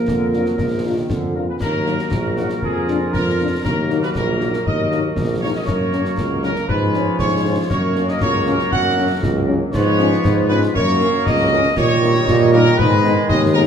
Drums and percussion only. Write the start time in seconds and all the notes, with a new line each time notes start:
0.08 concert bass drum, snare
0.33 snare
0.46 snare
0.58 concert bass drum, snare
1.10 concert bass drum, snare
1.61 concert bass drum, snare, crash
1.86 snare
1.99 snare
2.11 concert bass drum, snare
2.37 snare
2.50 snare
2.62 concert bass drum
2.88 snare
3.14 concert bass drum, snare
3.65 concert bass drum, snare, crash
3.90 snare
4.03 snare
4.15 concert bass drum, snare
4.41 snare
4.54 snare
4.66 concert bass drum
4.92 snare
5.16 concert bass drum, snare
5.67 concert bass drum, snare, crash
5.92 snare
6.05 snare
6.17 concert bass drum, snare
6.43 snare
6.56 snare
6.68 concert bass drum
6.94 snare
7.19 concert bass drum, snare
7.70 concert bass drum, snare, crash
7.96 snare
8.08 snare
8.21 concert bass drum, snare
8.46 snare
8.59 snare
8.72 concert bass drum, snare
9.23 concert bass drum, snare
9.74 concert bass drum, snare, crash
9.99 snare
10.12 snare
10.24 concert bass drum, snare
10.50 snare
10.63 snare
10.75 concert bass drum
11.01 snare
11.26 concert bass drum, snare
11.76 concert bass drum, snare, crash
12.02 snare
12.15 snare
12.27 concert bass drum, snare
12.53 snare
12.66 snare
12.78 concert bass drum
13.04 snare
13.29 concert bass drum, snare